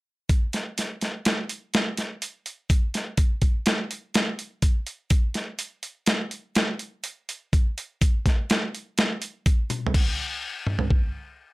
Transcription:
0.29 kick, closed hi-hat
0.53 snare, closed hi-hat
0.78 snare, closed hi-hat
1.01 snare, closed hi-hat
1.25 snare, closed hi-hat
1.49 closed hi-hat
1.74 snare, closed hi-hat
1.97 snare, closed hi-hat
2.22 closed hi-hat
2.46 closed hi-hat
2.70 kick, closed hi-hat
2.94 snare, closed hi-hat
3.17 kick, closed hi-hat
3.42 kick, closed hi-hat
3.66 snare, closed hi-hat
3.91 closed hi-hat
4.14 snare, closed hi-hat
4.39 closed hi-hat
4.62 kick, closed hi-hat
4.87 closed hi-hat
5.10 kick, closed hi-hat
5.34 snare, closed hi-hat
5.59 closed hi-hat
5.83 closed hi-hat
6.06 snare, closed hi-hat
6.31 closed hi-hat
6.55 snare, closed hi-hat
6.79 closed hi-hat
7.04 closed hi-hat
7.29 closed hi-hat
7.53 kick, closed hi-hat
7.78 closed hi-hat
8.02 kick, closed hi-hat
8.26 kick, snare, closed hi-hat
8.50 snare, closed hi-hat
8.75 closed hi-hat
8.98 snare, closed hi-hat
9.22 closed hi-hat
9.46 kick, closed hi-hat
9.70 closed hi-hat, high tom
9.87 floor tom
9.94 kick, crash
10.67 mid tom
10.79 floor tom
10.90 kick

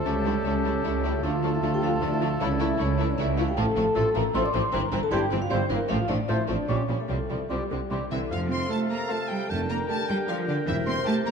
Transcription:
Already playing: A3 A4 A5
0.05 C#2 G3 A3 C#4 E4 G4 C#5
0.25 G3 A3 D4 E4 D5
0.45 C#2 G3 A3 C#4 E4 C#5
0.65 G3 A3 E4
0.84 C#2 G3 A3 C#4 E4 C#5
1.03 G3 A3 E4 A4
1.24 D2 F3 A3 D4 F4 A4 F5 A5
1.43 F3 A3 D4
1.54 E4 E5
1.63 D2 F3 A3 D4 F4 F5
1.74 G4 G5
1.82 F3 A3 D4 F4 F5
2.01 D2 F3 A3 D4 D5
2.13 E4 E5
2.20 F3 A3 D4 F4 F5
2.40 C#2 E3 A3 C#4 E4 C#5
2.51 D4 D5
2.60 E3 A3 E4 E5
2.78 C#2 E3 A3 C#4 E4 C#5
2.98 E3 A3 E4
3.09 D4 D5
3.18 C#2 E3 A3 E4 E5
3.37 E3 A3 E4 F4 F5
3.48 G4 G5
3.57 A1 A2 F3 A3 C4 A4 A5
3.76 A1 A2 F3 A3 C4
3.95 A1 A2 F3 A3 C4 F4 A4 C6
4.15 A1 A2 F3 A3 C4 A#4 A#5
4.34 A1 A2 F3 A3 C4 F4 A4 C5 C6
4.45 D5 D6
4.53 A1 A2 F3 A3 C4 C5 C6
4.72 G1 G2 E3 C4 A#4 A#5
4.92 G1 G2 E3 C4
5.03 A4 A5
5.11 G1 G2 E3 G3 C4 E4 G4 C5 G5 C6
5.31 G1 G2 E3 C4
5.42 F4 F5
5.50 G1 G2 E3 G3 C4 E4 C5 C6
5.70 G1 G2 E3 A#3 C4 A#4
5.88 A1 A2 F3 A3 C4 F4 F5
6.08 A1 A2 F3 A3 C4 D4 D5
6.28 A1 A2 F3 A3 C4 E4 F4 C5 E5 C6
6.48 A1 A2 F3 A3 C4 D4 D5
6.68 A#1 A#2 F3 G3 C#4 F4 G4 C#5 C#6
6.89 A#1 A#2 F3 G3 C#4
7.00 A3 A4
7.08 C2 C3 F3 G3 A3 C4 A4
7.29 C2 C3 F3 G3 C4
7.49 C2 C3 F3 G3 C4 F4 G4 C6
7.70 C2 C3 D3 G3 C4
7.90 C2 C3 E3 G3 C4 E4 G4 C6
8.11 C2 C3 D3 E3 G3 C4 E4 E5
8.30 F1 F2 C3 F3 F4 A4 F5
8.51 C4 C5 C6
8.70 A3 F4 A4 C5 F5 A5
8.90 A#3 A#4 A#5
9.10 A3 F4 A4 C5 F5 A5
9.29 G3 G4 G5
9.49 F1 F2 D3 A3 A4 A#4 G5 A5
9.69 A#3 A#4 A#5
9.88 A3 G4 A4 A#4 D5 A5
10.08 G3 G4 G5
10.28 F3 F4 G4 A#4 D5 F5
10.47 D3 D4 D5
10.67 E1 E2 C3 E3 E4 E5
10.86 C4 C5 C6
11.06 A3 G4 A4 A#4 C5 A5
11.26 A#3 A#4 A#5

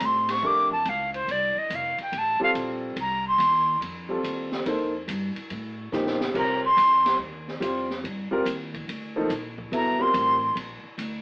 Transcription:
Already playing: G3 C4 F4 A4
0.00 A2, hi-hat pedal, ride
0.05 C6
0.29 C#6, snare, ride
0.42 F2 A3 D4 G4 A#4
0.47 D6
0.71 A5, kick
0.85 C#2, hi-hat pedal, ride
0.89 F5
1.14 C5, ride
1.28 C2 D5, ride
1.56 D#5, muted upright bass stroke
1.70 F1, hi-hat pedal, ride
1.75 F5
1.98 G5, muted upright bass stroke, ride
2.12 A1, ride
2.18 A5
2.40 G3 C4 F4 A4 F5, muted upright bass stroke
2.55 A#1, hi-hat pedal, ride
2.96 C2, ride
3.01 A#5
3.28 C6
3.38 D#2, hi-hat pedal, ride
3.81 F2, ride
4.09 G3 C4 F4 A4
4.23 D#2, hi-hat pedal, ride
4.52 snare
4.66 F2 A#3 D#4 A4 C5, ride
5.08 G2, hi-hat pedal, ride
5.36 muted upright bass stroke, ride
5.50 A2, ride
5.92 A#2 F3 A#3 D#4 G4, snare, hi-hat pedal
6.07 snare
6.21 snare
6.34 C3 G3 C4 F4 A#4, kick, crash
6.39 A#5
6.65 C6
6.77 F2, hi-hat pedal, ride
7.06 snare, ride
7.19 D#2
7.48 snare
7.60 F2 G3 C4 F4 C5, hi-hat pedal, ride
7.90 snare
8.04 G2, ride
8.31 G3 C4 F4 A#4, muted upright bass stroke
8.45 D#2, hi-hat pedal, ride
8.74 kick, ride
8.88 D2, ride
9.16 F3 A#3 D#4 A4
9.29 A#1, hi-hat pedal, ride
9.58 kick
9.72 G1 F#3 B3 E4 A4 A#5, ride
9.99 G3 C4 F4 A#4 C6
10.14 A1, hi-hat pedal, ride
10.55 A#1, ride
10.83 muted upright bass stroke
10.98 D2, hi-hat pedal, ride

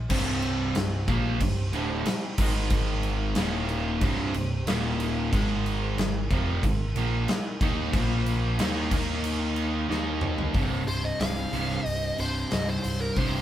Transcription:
0.09 C1 C2 G2 C3 C4 G4 C5, kick, crash
0.42 crash
0.75 C1 C2 G2, snare, crash
1.07 A#1 A#2 F3 A#3, kick, crash
1.40 C1 C2 G2, kick, crash
1.72 D1 D2 A2 D3, crash
2.05 muted overdriven electric guitar stroke, muted distorted electric guitar stroke, muted picked electric bass stroke, snare, crash
2.38 G#1 G#2 D#3 G#3 D#4 A#4, kick, crash
2.70 kick, crash
3.03 crash
3.35 D#1 D#2 A#2 D#3 F5, snare, crash
3.69 crash
4.01 C1 C2 G2 C3 C4 G4 C5, kick, crash
4.34 C1 C2 G2, crash
4.66 D#1 D#2 A#2 D#3 D#4 A#4 F5, snare, crash
5.00 crash
5.32 G#1 G#2 D#3 G#3, kick, crash
5.66 crash
5.97 G#1 G#2 D#3, snare, crash
6.30 F1 F2 C3 F3, kick, crash
6.63 G#1 G#2 D#3, kick, crash
6.96 A#1 A#2 F3 A#3, crash
7.28 muted picked electric bass stroke, muted distorted electric guitar stroke, muted overdriven electric guitar stroke, snare, crash
7.61 D#2 D#3 A#3 D#4, kick, crash
7.91 A#1 A#2 A#3 F4 C5, kick, crash
7.96 F3 A#3
8.26 crash
8.58 D#2 D#3 G#3 A#3 D#4 A#4, snare, crash
8.91 D#2 D#3 A#3 D#4 F5, kick, crash
9.24 crash
9.56 crash
9.89 D#2 D#3 A#3 D#4, snare
10.21 mid tom
10.38 floor tom
10.54 C1 C2 G2 C3 C4 G4 C5, kick, open hi-hat
10.87 C1 C5, open hi-hat
11.04 D#5
11.20 C1 F5, snare, open hi-hat
11.52 C1 C2 G2 C3, open hi-hat
11.70 snare
11.86 C1 D#5, open hi-hat
12.18 C1 C2 G2 C3 C5, open hi-hat
12.51 C1 C2 G2 C3 D#5, snare, open hi-hat
12.68 C5
12.84 C1, open hi-hat
13.01 A#4
13.16 C1 C2 G2 C3 C5, kick, open hi-hat

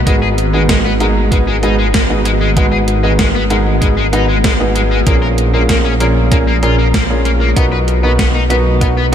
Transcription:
0.07 G#1 G#2 G#3 B3 D#4 F#4 G#4 B4, kick, closed hi-hat
0.22 G#4
0.38 closed hi-hat
0.53 G#2 G#3 B3 D#4 F#4 G#4 B4
0.69 G#3, kick, snare, closed hi-hat
0.85 B3
1.00 G#2 G#3 B3 D#4 F#4 G#4 A#4, closed hi-hat
1.32 G#2 G#3 B3 D#4 F#4 G#4 B4, kick, closed hi-hat
1.47 G#3
1.63 G#2 B3 D#4 F#4 G#4 B4, closed hi-hat
1.79 G#3
1.94 G#3, kick, snare, closed hi-hat
2.10 G#2 B3 D#4 F#4 G#4 B4
2.25 G#3, closed hi-hat
2.41 G#3
2.57 G#2 G#3 B3 D#4 F#4 G#4 B4, kick, closed hi-hat
2.72 G#4
2.88 closed hi-hat
3.03 G#2 G#3 B3 D#4 F#4 G#4 B4
3.19 G#3, kick, snare, closed hi-hat
3.35 B3
3.50 G#2 G#3 B3 D#4 F#4 G#4 A#4, closed hi-hat
3.82 G#2 G#3 B3 D#4 F#4 G#4 B4, kick, closed hi-hat
3.97 G#3
4.13 G#2 B3 D#4 F#4 G#4 B4, closed hi-hat
4.29 G#3
4.44 G#3, kick, snare, closed hi-hat
4.60 G#2 B3 D#4 F#4 G#4 B4
4.75 G#3, closed hi-hat
4.91 G#3
5.07 A#1 A#2 A#3 C#4 F4 G#4 A#4, kick, closed hi-hat
5.22 A#4
5.38 closed hi-hat
5.53 A#2 A#3 C#4 F4 G#4 A#4
5.69 A#3, kick, snare, closed hi-hat
5.85 C#4
6.00 A#2 A#3 C#4 F4 G#4 A#4, closed hi-hat
6.31 A#2 A#3 C#4 F4 G#4 A#4, kick, closed hi-hat
6.47 A#3
6.63 A#2 A#3 C#4 F4 G#4 A#4, closed hi-hat
6.79 A#3
6.94 A#3, kick, snare, closed hi-hat
7.10 A#2 A#3 C#4 F4 G#4 A#4
7.25 A#3, closed hi-hat
7.41 A#3
7.56 B1 B2 B3 D#4 F#4 A#4 B4, kick, closed hi-hat
7.72 B4
7.88 closed hi-hat
8.03 B2 B3 D#4 F#4 A#4 B4
8.19 B3, kick, snare, closed hi-hat
8.35 D#4
8.50 B2 B3 D#4 F#4 A#4 B4, closed hi-hat
8.81 B2 B3 D#4 F#4 A#4 B4, kick, closed hi-hat
8.97 B3

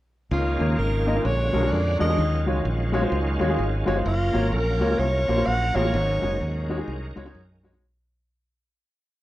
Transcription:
0.31 C#2 C#3 D#3 G#3 A#3 C#4 F4
0.59 D#2 A#3 D#4 F4 C#5
0.78 G#1 A#4
1.06 A#3 D#4 F4 D#5
1.15 A#3 D#4 F4 A#4
1.24 A#1 A#2 D3 A#3 F#4 C#5
1.53 B1 G#3 D4 F#4 A#4
1.61 G#3 D4 F#4 A#4
1.72 F2 D5
1.99 E2 G#3 D4 F#4 A#4 D#5
2.08 G#3 D4 F#4 G#4
2.18 D#2 D#3 F#3 F4
2.46 C#2 G#3 F4 F#4 C#5
2.65 A#1
2.92 G#3 F4 F#4 C#5
3.01 G#3 F4 F#4 C5
3.12 C#2
3.39 D#2 G#3 F4 F#4 C#5
3.48 G#3 F4 F#4 G#4
3.59 G#1
3.86 G1 G#3 F4 F#4 C#5
3.95 G#3 F4 F#4 C5
4.05 F#1 A#3 C#4 F4 A#4
4.33 G#1 A#3 F4 F#4 C#5
4.53 A#1 A#4
4.80 C#2 A#3 F4 F#4 C#5
4.89 A#3 F4 F#4 C#5
4.99 C2 C#5
5.28 A#1 A#3 F4 F#4 C5
5.36 A#3 F4 F#4 C5
5.46 A#1 F#5
5.75 A1 A#3 F4 F#4 G#4 C#5
5.84 A#3 F4 F#4 C#5
5.94 G#1 G#2 D#3 G#3
6.22 F#1 G#3 D#4 F#4 C#5
6.41 D#2
6.69 G#3 D#4 F#4 C#5
6.77 G#3 D#4 F#4 G#4
6.88 C2
7.16 C#2 G#3 D#4 F#4 C#5
7.25 G#3 D#4 F#4 C#5
7.35 F#2
7.63 G#3 D#4 F#4 C#5
7.72 G#3 D#4 F#4 C#5

